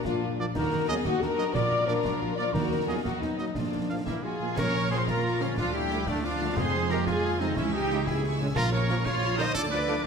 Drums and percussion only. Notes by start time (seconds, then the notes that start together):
0.05 concert bass drum, snare
0.55 concert bass drum, snare, crash
1.05 concert bass drum, snare
1.22 snare
1.38 snare
1.55 concert bass drum, snare
1.88 snare
2.05 concert bass drum, snare
2.54 concert bass drum, snare
3.05 concert bass drum, snare
3.22 snare
3.38 snare
3.55 concert bass drum, snare
4.07 concert bass drum, snare
4.57 concert bass drum, snare, crash
4.92 snare
5.08 concert bass drum, snare
5.41 snare
5.57 concert bass drum, snare
5.91 snare
6.07 concert bass drum, snare
6.57 concert bass drum, snare
6.90 snare
7.07 concert bass drum, snare
7.41 snare
7.57 concert bass drum, snare
7.90 snare
8.07 concert bass drum, snare
8.56 concert bass drum, snare, crash
8.90 snare
9.06 concert bass drum, snare
9.39 snare
9.55 concert bass drum, snare
9.88 snare